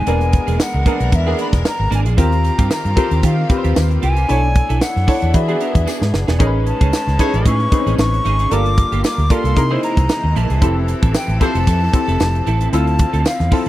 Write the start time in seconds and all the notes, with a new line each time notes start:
Already playing: G#3 G#5
0.06 E1 E3 A#3 B3 D4 G#4 A#4, closed hi-hat
0.21 muted clean electric guitar stroke, closed hi-hat
0.33 muted clean electric guitar stroke, kick, closed hi-hat
0.47 E1 A#3 D4 G#4, closed hi-hat
0.59 F#5, muted clean electric guitar stroke, snare, tambourine
0.74 C#2, muted clean electric guitar stroke
0.86 A#3 B3 D4 G#4 A#4, kick, closed hi-hat
1.00 B1 A#3 D4 A#4, closed hi-hat
1.12 E2 E5, muted clean electric guitar stroke, kick, closed hi-hat
1.26 A#3 B3 D4 G#4 A#4
1.38 A#3 D4 A#4 B5, closed hi-hat
1.53 E1, muted clean electric guitar stroke, kick, snare, closed hi-hat
1.65 A#5, muted clean electric guitar stroke, snare, tambourine
1.79 G#1, muted clean electric guitar stroke
1.91 G#1 A#3 D4 A#4, closed hi-hat
1.95 G#5
2.06 A#1 A#3 D4 G#4, closed hi-hat
2.17 D#2 D#3 C4 F4 G4 A#4, kick, closed hi-hat
2.21 A#5
2.32 muted clean electric guitar stroke, closed hi-hat
2.44 muted clean electric guitar stroke, closed hi-hat
2.58 G2 C4 F4 G4, kick, closed hi-hat
2.71 A#5, muted clean electric guitar stroke, snare, tambourine
2.85 G2, muted clean electric guitar stroke, closed hi-hat
2.96 C4 F4 G4 A4 A#4 C5, kick, closed hi-hat
3.11 D#2 C4 F4 G4, closed hi-hat
3.23 D#3 C4 F4 G4 F5, kick, closed hi-hat
3.37 muted clean electric guitar stroke
3.50 C4 F4 G4 B4, muted clean electric guitar stroke, kick, closed hi-hat
3.57 C5
3.64 D#2 C4 F4 G4, closed hi-hat
3.76 D#2, snare, tambourine
3.91 muted clean electric guitar stroke, closed hi-hat
4.02 C2 C4 F4 G4 G#5, closed hi-hat
4.17 C4 F4 G4, closed hi-hat
4.28 B1 A3 B3 D4 E4 A4 C#5, closed hi-hat
4.43 muted clean electric guitar stroke
4.55 muted clean electric guitar stroke, kick, closed hi-hat
4.69 B1 D4 E4 A4, closed hi-hat
4.81 F#5, muted clean electric guitar stroke, snare, tambourine
4.96 F#2, muted clean electric guitar stroke, snare
5.07 D4 E4 A4 C#5, kick, open hi-hat
5.22 E2 D4 E4 B4, closed hi-hat
5.34 E3 D4 F#4 G#4 B4 E5, muted clean electric guitar stroke, kick, closed hi-hat
5.48 B3 D4 F#4 G#4 B4, closed hi-hat
5.60 B3 D4 A#4, closed hi-hat
5.75 E2, muted clean electric guitar stroke, kick, closed hi-hat
5.86 B3 D4 G#4, snare, tambourine
6.01 G#2, muted clean electric guitar stroke, snare
6.13 F#1, muted clean electric guitar stroke, snare
6.27 E1 B3 D4 G#4, snare
6.39 A1 G#3 A3 C#4 D#4 G#4 A#4, kick, closed hi-hat
6.46 B4
6.54 muted clean electric guitar stroke
6.66 A5, muted clean electric guitar stroke, closed hi-hat
6.81 C#2 C#4 D#4 G#4, kick, closed hi-hat
6.93 snare, tambourine
7.07 C#2, muted clean electric guitar stroke, snare, closed hi-hat
7.19 C#4 D#4 E4 G#4 A4 B4 C#5, kick, closed hi-hat
7.34 A1 C#4 D#4 G#4, closed hi-hat
7.46 A2 C#4 D#4 G#4 C#6, kick, closed hi-hat
7.60 muted clean electric guitar stroke, closed hi-hat
7.72 C4 D#4 G#4 B4, muted clean electric guitar stroke, kick, closed hi-hat
7.78 C#4
7.87 A1 C#4 D#4 G#4, closed hi-hat
7.98 A1 C#6, muted clean electric guitar stroke, snare, tambourine
8.13 muted clean electric guitar stroke, closed hi-hat
8.25 G#1 C#4 D#4 G#4, closed hi-hat
8.39 C#4 D#4 G#4, closed hi-hat
8.50 G1 G3 A#3 D4 F4 G4 A4 A#4 D6, closed hi-hat
8.66 muted clean electric guitar stroke, closed hi-hat
8.78 muted clean electric guitar stroke, kick, closed hi-hat
8.92 G1 A#3 F4 G4, closed hi-hat
9.04 D6, muted clean electric guitar stroke, snare, tambourine
9.18 D2, muted clean electric guitar stroke, closed hi-hat
9.30 A#3 D4 F4 G4 A4 A#4 C6, kick, closed hi-hat
9.44 C2 A#3 F4 A4, closed hi-hat
9.56 C3 E3 G#3 A#3 D#4 E4 G#4 A#4 D#5, muted clean electric guitar stroke, kick, closed hi-hat
9.71 A#3 D#4 E4 G#4 C5
9.83 A#3 E4 A#4 A#5, closed hi-hat
9.97 C2, muted clean electric guitar stroke, kick, closed hi-hat
10.09 muted clean electric guitar stroke, snare, tambourine
10.24 D#2, muted clean electric guitar stroke
10.36 A#1 A#3 E4 A#4 A5, closed hi-hat
10.50 C2 A#3 E4 G#4, closed hi-hat
10.61 F1 F3 C4 E4 G4 A4, kick, closed hi-hat
10.77 muted clean electric guitar stroke
10.88 muted clean electric guitar stroke, closed hi-hat
11.02 A1 C4 E4 A4, kick, closed hi-hat
11.14 G5, muted clean electric guitar stroke, snare, tambourine
11.28 A1, muted clean electric guitar stroke, closed hi-hat
11.40 C4 E4 F4 G4 A4 C5 A5, kick, closed hi-hat
11.55 F1 C4 E4 A4, closed hi-hat
11.67 F2 C4 E4 A4, kick, closed hi-hat
11.82 muted clean electric guitar stroke
11.93 C4 E4 G4 A4, muted clean electric guitar stroke, kick, closed hi-hat
12.08 F1 C4 E4 A4, closed hi-hat
12.20 F1, muted clean electric guitar stroke, snare, tambourine
12.35 muted clean electric guitar stroke, closed hi-hat
12.47 A1 C4 E4 A4, closed hi-hat
12.61 C4 E4 A4, closed hi-hat
12.72 D2 D3 F3 C4 E4 F4 A4 A5, closed hi-hat
12.87 muted clean electric guitar stroke, closed hi-hat
12.99 muted clean electric guitar stroke, kick, closed hi-hat
13.13 D2 C4 F4 A4, closed hi-hat
13.25 F5, muted clean electric guitar stroke, snare, tambourine
13.39 E2, muted clean electric guitar stroke, snare, closed hi-hat
13.51 C4 E4 F4 A4 A5, kick, open hi-hat